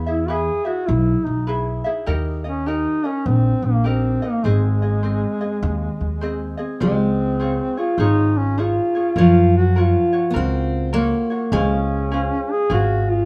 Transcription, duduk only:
0.09 0.32 E4 medium
0.30 0.67 G#4 loud
0.66 0.88 F#4 medium
0.87 1.26 E4 medium
1.25 1.47 D#4 medium
2.48 2.69 C#4 medium
2.67 3.07 D#4 loud
3.06 3.28 C#4 medium
3.27 3.67 C4 medium
3.65 3.88 A#3 medium
3.86 4.25 C4 medium
4.24 4.47 A#3 medium
4.46 6.59 G#3 medium
6.82 7.80 C4 medium
7.79 8.00 F4 medium
8.00 8.39 D#4 loud
8.37 8.62 C#4 medium
8.61 9.18 F4 medium
9.19 9.53 F4 loud
9.57 9.82 F#4 medium
9.80 10.37 F4 loud
11.54 12.53 C#4 medium
12.51 12.72 G#4 medium
12.73 13.13 F#4 medium
13.11 13.25 F4 medium

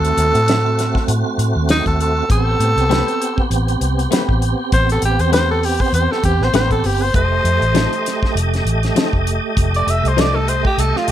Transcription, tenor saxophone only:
0.00 1.06 A4 loud
1.71 1.86 D#4 loud
1.87 1.99 A4 medium
2.01 2.30 A4 medium
2.31 3.48 A4 loud
4.73 4.88 C5 medium
4.92 5.03 A4 medium
5.05 5.22 G4 medium
5.20 5.32 C5 medium
5.33 5.48 C5 loud
5.51 5.67 A4 medium
5.65 5.83 G4 medium
5.81 5.93 C5 medium
5.94 6.13 C5 medium
6.11 6.23 A4 medium
6.25 6.45 G4 medium
6.44 6.55 C5 medium
6.56 6.70 C5 medium
6.72 6.88 A4 medium
6.86 7.04 G4 medium
7.02 7.14 C5 medium
7.16 8.33 C5 medium
9.76 9.92 D5 medium
9.90 10.09 E5 medium
10.08 10.22 C5 medium
10.20 10.37 D5 medium
10.35 10.50 A4 medium
10.49 10.64 C5 medium
10.66 10.81 G4 medium
10.80 10.98 A4 medium
10.97 11.11 F4 medium

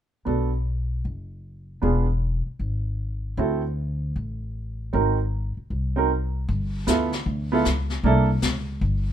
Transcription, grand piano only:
0.25 0.48 B3 soft
0.25 0.49 D4 soft
0.25 0.49 F#4 soft
0.25 0.49 A4 soft
1.82 2.05 B3 soft
1.82 2.05 D4 soft
1.82 2.05 F4 soft
1.82 2.06 G#4 medium
3.38 3.61 C4 soft
3.38 3.61 E4 medium
3.38 3.61 F#4 soft
3.38 3.62 A4 medium
4.93 5.16 C4 soft
4.93 5.16 D#4 soft
4.93 5.16 F#4 soft
4.93 5.17 A#4 medium
5.96 6.09 C4 medium
5.96 6.09 D#4 medium
5.96 6.09 F#4 soft
5.96 6.10 A#4 medium
6.87 7.10 B3 medium
6.87 7.10 E4 medium
6.87 7.10 F4 medium
6.87 7.11 A4 medium
7.52 7.64 B3 medium
7.52 7.65 E4 medium
7.52 7.65 F4 medium
7.52 7.65 A4 medium
8.04 8.27 A#3 medium
8.04 8.27 D4 medium
8.04 8.27 E4 medium
8.04 8.28 A4 medium

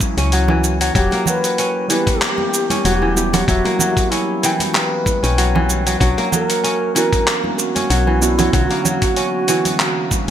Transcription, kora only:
0.00 0.48 E3 medium
0.00 0.32 F#3 medium
0.00 1.12 A#3 medium
0.00 0.17 C#4 medium
0.18 1.58 C#4 medium
0.33 0.80 F#3 medium
0.50 1.00 E3 medium
0.81 0.94 F#3 medium
0.96 1.25 F#3 loud
1.12 2.21 A#3 loud
1.27 2.84 F#3 medium
1.59 2.70 C#4 medium
1.90 3.01 E3 medium
2.22 3.65 A#3 medium
2.70 4.11 C#4 medium
2.85 3.32 F#3 medium
3.02 4.42 E3 medium
3.34 3.47 F#3 medium
3.48 3.79 F#3 loud
3.65 4.74 A#3 loud
3.80 5.37 F#3 medium
4.11 5.22 C#4 medium
4.43 5.54 E3 medium
4.74 6.17 A#3 medium
5.23 6.63 C#4 medium
5.38 5.85 F#3 medium
5.55 6.06 E3 medium
5.86 5.99 F#3 medium
6.00 6.31 F#3 loud
6.18 7.26 A#3 loud
6.32 7.89 F#3 medium
6.64 7.75 C#4 medium
6.95 8.06 E3 medium
7.27 8.70 A#3 medium
7.75 9.16 C#4 medium
7.90 8.38 F#3 medium
8.07 9.47 E3 medium
8.39 8.52 F#3 medium
8.53 8.84 F#3 loud
8.70 9.79 A#3 loud
8.85 10.30 F#3 medium
9.17 10.28 C#4 medium
9.48 10.30 E3 medium
9.80 10.30 A#3 medium

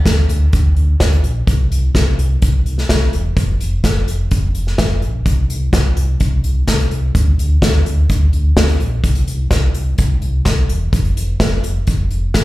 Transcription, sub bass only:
0.06 0.25 D2 medium
0.29 0.49 D2 medium
0.53 0.72 D2 loud
0.76 0.96 D2 medium
1.00 1.20 D2 medium
1.23 1.43 A#1 medium
1.47 1.67 C2 loud
1.71 1.90 C2 medium
1.95 2.14 C2 medium
2.18 2.37 C2 medium
2.42 2.62 C2 medium
2.65 2.85 C2 medium
2.90 3.09 C2 medium
3.13 3.32 E1 medium
3.37 3.56 F1 loud
3.60 3.80 F1 loud
3.84 4.03 F1 medium
4.08 4.27 F1 medium
4.32 4.51 F1 loud
4.55 4.74 F1 medium
4.79 5.03 F1 medium
5.02 5.21 A#1 medium
5.26 5.45 C2 loud
5.50 5.69 C2 medium
5.73 5.92 C2 medium
5.97 6.16 C2 medium
6.21 6.40 C2 loud
6.44 6.63 C2 medium
6.68 6.87 C2 medium
6.91 7.11 C2 medium
7.15 7.34 D2 loud
7.38 7.58 D2 medium
7.62 7.82 D2 medium
7.86 8.05 D2 medium
8.10 8.29 D2 loud
8.33 8.52 D2 medium
8.57 8.76 D2 medium
8.80 9.00 A#1 medium
9.04 9.23 C2 loud
9.28 9.47 C2 medium
9.51 9.70 C2 medium
9.75 9.94 C2 medium
9.98 10.18 C2 loud
10.22 10.41 C2 medium
10.45 10.65 C2 medium
10.69 10.89 E1 medium
10.93 11.12 F1 loud
11.17 11.36 F1 medium
11.40 11.59 F1 loud
11.64 11.83 F1 medium
11.88 12.07 F1 loud
12.10 12.30 F1 medium
12.34 12.44 F1 loud

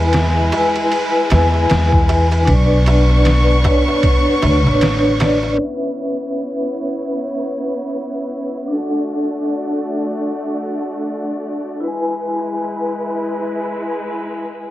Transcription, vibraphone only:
0.00 0.48 E4 medium
0.00 0.49 B4 medium
0.00 0.51 G#5 medium
0.52 1.26 E4 medium
0.52 1.28 B4 medium
0.56 1.28 G#5 loud
1.28 2.42 E4 medium
1.32 2.44 B4 medium
1.36 2.46 G#5 loud
2.45 3.59 D4 medium
2.49 3.61 B4 medium
2.49 3.63 D5 loud
3.63 3.87 D4 medium
3.63 3.88 B4 medium
3.63 3.89 C#5 medium
4.64 5.16 D4 medium
4.64 5.17 B4 medium
4.68 5.18 C#5 medium
5.18 5.42 D4 loud
5.18 5.43 B4 medium
5.18 5.44 D5 loud
5.55 8.65 C#4 medium
5.55 8.67 B4 medium
8.68 11.77 D4 medium
8.72 11.79 A4 medium
8.72 11.81 F#5 medium
11.80 14.71 E4 medium
11.80 14.71 B4 medium
11.88 14.71 G#5 medium

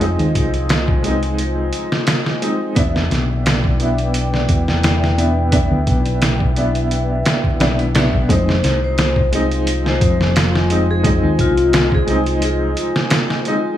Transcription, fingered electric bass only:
0.00 0.16 F1 medium
0.19 0.34 D#2 medium
0.35 1.70 C2 medium
2.77 3.07 E1 loud
3.11 4.46 B1 medium
4.49 5.68 E1 loud
5.71 5.85 D2 medium
5.87 7.22 B1 medium
7.60 8.26 B1 medium
8.29 8.60 F1 loud
8.64 9.98 C2 medium
10.01 11.20 F1 loud
11.23 11.37 D#2 loud
11.39 12.74 C2 loud

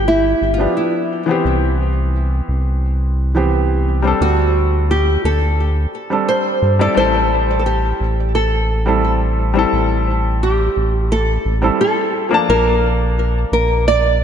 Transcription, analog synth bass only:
0.00 0.35 G1 medium
0.42 0.68 G1 medium
1.45 2.42 C2 medium
2.49 4.14 C2 medium
4.21 5.18 D2 loud
5.24 5.87 D2 medium
6.62 6.88 G2 loud
6.97 7.93 A1 medium
8.00 9.66 A1 loud
9.73 10.69 A1 loud
10.77 11.38 A1 medium
11.45 11.71 A1 loud
12.49 13.45 A#1 loud
13.52 14.24 A#1 loud

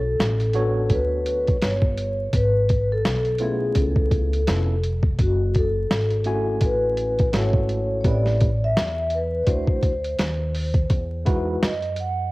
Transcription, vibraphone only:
0.00 0.95 A4 medium
0.93 1.65 B4 medium
1.64 2.36 C#5 medium
2.36 2.87 B4 loud
2.92 3.43 A4 medium
3.42 3.78 G#4 medium
3.78 4.80 A4 medium
5.21 5.57 F#4 medium
5.57 6.66 A4 medium
6.65 7.31 B4 medium
7.36 7.96 C#5 medium
8.01 8.06 C#5 medium
8.08 8.65 D5 loud
8.64 9.15 E5 loud
9.15 9.44 B4 medium
9.44 9.49 D5 medium
9.50 10.52 C5 medium
11.64 11.96 D#5 medium
12.00 12.32 F#5 medium

